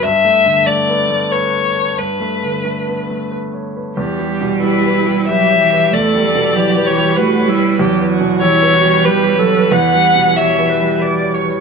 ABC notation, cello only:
X:1
M:3/4
L:1/8
Q:1/4=93
K:Edor
V:1 name="Cello" clef=bass
z6 | z6 | G,4 F, E, | A, G, F, E, A, G, |
F,2 E,2 G, F, | E,4- E, z |]